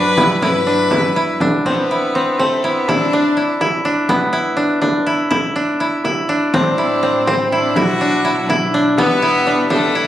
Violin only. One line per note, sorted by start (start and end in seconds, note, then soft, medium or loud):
0.00 0.38 B4 loud
0.43 1.37 B4 loud
1.67 2.42 B3 medium
2.40 2.66 A3 medium
2.65 2.90 B3 medium
2.88 3.61 D4 medium
6.55 7.29 D4 medium
7.27 7.52 C4 medium
7.53 7.78 D4 medium
7.77 8.49 F#4 loud
8.97 9.66 B3 loud
9.71 10.07 A3 medium